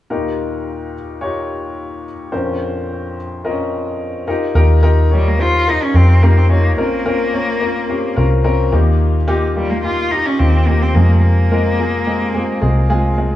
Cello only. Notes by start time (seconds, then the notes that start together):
5.14 G3
5.28 A#3
5.41 F4
5.70 D#4
5.82 C#4
5.95 C4
6.23 A#3
6.38 C4
6.52 A#3
6.80 A#3
9.56 G3
9.70 A#3
9.84 F4
10.11 D#4
10.26 C#4
10.39 C4
10.67 A#3
10.82 C4
10.95 A#3
11.22 A#3